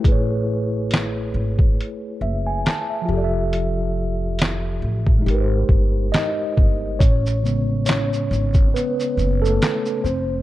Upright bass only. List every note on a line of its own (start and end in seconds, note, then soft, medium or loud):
0.05 1.31 A1 medium
1.34 1.75 G#1 medium
2.21 2.62 F#1 medium
3.09 4.78 F1 medium
4.82 5.23 A1 medium
5.26 5.66 G#1 medium
5.69 6.10 G1 medium
6.58 6.97 G1 medium
7.00 8.27 A1 loud
8.31 8.71 G#1 medium
9.17 9.58 F#1 medium
10.04 10.42 F1 medium